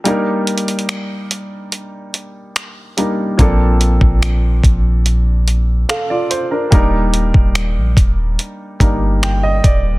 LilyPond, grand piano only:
\new Staff \with { instrumentName = "Grand piano" } { \time 4/4 \key ees \lydian \tempo 4 = 72 << { r1 | r2. <a' f''>16 <f' d''>16 c''16 <d' bes'>16~ | <d' bes'>16 r2 r8. g''16 ees''16 d''8 | } \\ { <g bes d' ees' bes'>2.~ <g bes d' ees' bes'>8 <g bes d' ees' bes'>8 | <f bes c' d' a'>1 | <g bes d' ees' bes'>2~ <g bes d' ees' bes'>8 <g bes d' ees' bes'>4. | } >> }